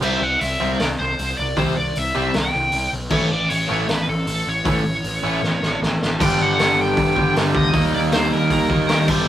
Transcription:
0.01 C2 C3 G3 C4 E4 E5, crash
0.21 C2 F#5
0.41 C2 E5, open hi-hat
0.61 C2 C3 G3 C4 E4
0.79 C2 D5, snare, open hi-hat
0.99 C2 C5
1.19 C2, open hi-hat
1.38 C2 D5
1.57 C2 C3 G3 C4 E4 C5, kick, open hi-hat
1.76 C2 D5
1.95 C2 E5, open hi-hat
2.15 C2 C3 G3 C4 E4
2.34 C2 G5, snare, open hi-hat
2.55 C2
2.72 C2, open hi-hat
2.93 B1
3.10 A1 A2 E3 A3 C#4 E4 C#5, kick, crash
3.32 A1 D5
3.50 A1 C#5, open hi-hat
3.68 A1 A2 E3 A3 C#4 E4
3.89 A1 B4, snare, open hi-hat
4.08 A1 A4
4.27 A1, open hi-hat
4.47 A1 C#5
4.64 A1 A2 E3 A3 C#4 E4, kick, open hi-hat
4.85 A1
5.04 A1, open hi-hat
5.23 A1 A2 E3 A3 C#4 E4
5.43 A1, snare
5.62 A1, snare
5.82 A1, snare
6.02 A1, snare
6.19 G1 G2 D3 G3 B3 D4 G5, kick, crash
6.40 G1 F#5
6.59 G1, snare, open hi-hat
6.81 G5
6.97 G1, kick, open hi-hat
7.15 G1 G2 D3 G3, kick
7.33 G1 G2 D3 G3, snare, open hi-hat
7.55 D2 D#5, kick
7.73 D#2 D#3 G3 A#3 D#4, kick, open hi-hat
7.94 D#2 D5
8.12 D#2 C5, snare, open hi-hat
8.33 D#2 A#4
8.50 D#2 A#4, kick, open hi-hat
8.69 D#2 D#3 A#3 D#4, kick
8.89 D#2 D#3 A#3 D#4, snare, open hi-hat
9.08 G1 G2 D3 G3 B3 D4, kick, crash

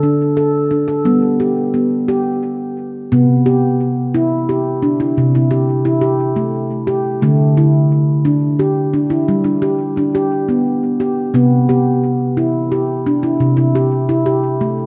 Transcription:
Already playing: D3
0.03 D4
0.37 A4
0.71 D4
0.88 A4
1.05 G3 B3
1.40 G4
1.74 B3
2.08 G4
3.12 C3 B3
3.46 G4
4.14 E4
4.49 G4
4.82 D4
5.00 E4
5.18 C3
5.35 E4
5.51 G4
5.85 E4
6.01 G4
6.36 A3
6.87 G4
7.22 D3 A3
7.57 E4
8.25 D4
8.59 G4
8.94 D4
9.10 E4
9.28 G3
9.44 D4
9.62 G4
9.97 D4
10.15 G4
10.49 B3
11.00 G4
11.34 C3 B3
11.69 G4
12.37 E4
12.72 G4
13.07 D4
13.23 E4
13.40 C3
13.57 E4
13.75 G4
14.09 E4
14.26 G4
14.61 A3

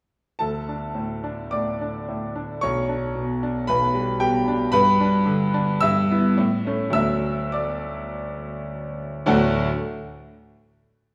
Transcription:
0.39 D2 A4 A5
0.69 D4
0.95 A2
1.24 D4
1.51 A2 D5 D6
1.81 D4
2.08 A2
2.36 D4
2.61 B1 C#5 C#6
2.89 D4
3.16 B2
3.43 D4
3.67 B1 B4 B5
3.94 G3
4.20 B2 G4 G5
4.48 D4
4.72 G2 B4 B5
5.00 D4
5.26 D3
5.54 D4
5.81 G2 E5 E6
6.11 B3 E4
6.38 A2
6.67 A3 C#4
6.90 D2 F#3 A3 D4 E6
6.95 E5
7.52 D5 D6
9.26 D2 A2 F#3 A3 D4 F#4

